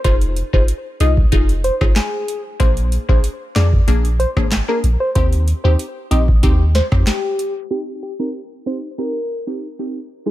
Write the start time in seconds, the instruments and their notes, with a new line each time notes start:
0.04 sub bass F1, synth stab D#4 F4 G#4, soft synth lead C5, kick, closed hi-hat
0.21 closed hi-hat
0.36 closed hi-hat
0.53 sub bass F1, synth stab D#4 F4 G#4, soft synth lead C5, kick
0.68 closed hi-hat
1.00 sub bass C2, synth stab D#4 F4 G#4, soft synth lead D#5, closed hi-hat
1.17 kick
1.32 sub bass F1, synth stab D#4 F4 G#4, kick, closed hi-hat
1.49 closed hi-hat
1.64 soft synth lead C5, closed hi-hat
1.81 sub bass G1, synth stab D#4 F4 G#4, kick, cross-stick
1.96 soft synth lead G#4, snare, clap, closed hi-hat
2.28 closed hi-hat
2.60 sub bass A#1, synth stab A#3 D4 G#4, soft synth lead C5, kick, closed hi-hat
2.77 closed hi-hat
2.92 closed hi-hat
3.09 sub bass A#1, synth stab A#3 D4 G#4, soft synth lead C5, kick
3.24 closed hi-hat
3.56 sub bass F2, synth stab A#3 D4 G#4, soft synth lead D5, snare, clap, closed hi-hat
3.73 kick
3.88 sub bass A#1, synth stab A#3 D4 G#4, closed hi-hat
4.05 closed hi-hat
4.20 soft synth lead C5, closed hi-hat
4.37 sub bass G#1, synth stab A#3 D4 G#4, kick, cross-stick
4.52 snare, clap, closed hi-hat
4.68 synth stab A#3 D4 G#4, soft synth lead A#4
4.83 sub bass A#1, closed hi-hat
5.00 soft synth lead C5
5.15 sub bass D#2, synth stab C4 D#4 G4, soft synth lead C5, kick, closed hi-hat
5.33 closed hi-hat
5.48 closed hi-hat
5.64 sub bass D#2, synth stab C4 D#4 G4, soft synth lead C5
5.79 closed hi-hat
6.11 sub bass A#1, synth stab C4 D#4 G4, soft synth lead D#5, closed hi-hat
6.28 kick
6.43 sub bass D#2, synth stab C4 D#4 G4, kick, closed hi-hat
6.75 soft synth lead C5, snare, closed hi-hat
6.92 sub bass F2, synth stab C4 D#4 G4, kick, cross-stick
7.07 soft synth lead G4, snare, clap, closed hi-hat
7.39 closed hi-hat
7.71 synth stab C4 D#4 G4, soft synth lead G4
8.03 soft synth lead G4
8.19 synth stab C4 D#4 G4, soft synth lead A#4
8.66 synth stab C4 D#4 G4, soft synth lead C5
8.98 synth stab C4 D#4 G4, soft synth lead A#4
9.47 synth stab C4 D#4 G4
9.79 synth stab C4 D#4 G4
10.26 synth stab G#3 D#4 F4, soft synth lead G#4